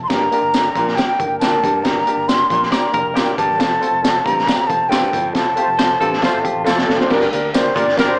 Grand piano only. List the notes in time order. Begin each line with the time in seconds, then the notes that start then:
0.10 G2 A#3 D4 G4 A#4
0.32 A#3 D4 G4 A#4
0.54 A#3 D4 G4 A4
0.76 A#3 D4 G4 A#4
0.98 A#3 D4 G4 A#4
1.19 A#3 D4 G4 A#4
1.42 A#3 D4 G4 A#4
1.62 A#3 D4 G4 A#4
1.83 G2 A#3 D4 G4 A#4
2.06 A#3 D4 G4 A#4
2.28 A#3 D4 G4 A#4
2.50 A#3 D4 G4 A#4
2.71 A#3 D4 G4 A#4
2.92 A#3 D4 G4 A#4
3.14 A#3 D4 G4 A#4
3.36 A#3 D4 G4 A#4
3.58 A3 C4 F4 A4
3.80 A3 C4 F4 A4
4.03 A3 C4 F4 A4
4.24 A3 C4 F4 A4
4.46 A3 C4 F4 G4
4.67 A3 C4 F4 C5
4.89 A3 C4 F4 A4
5.11 A3 C4 F4 A4
5.33 A3 C4 F4 A4
5.56 A3 C4 F4 G4
5.78 A3 C4 F4 A4
6.00 A3 C4 F4 A4
6.21 A3 C4 F4 A4
6.42 A3 C4 F4 G4
6.64 A3 C4 F4 A4
6.86 A3 C4 F4 A4
7.09 G2 A#3 D4 G4 A#4 D5
7.32 A#3 D4 G4 A#4 D5
7.53 A#3 D4 G4 A#4 D5
7.75 A#3 D4 G4 A#4 D5
7.97 A#3 D4 G4 A#4 D5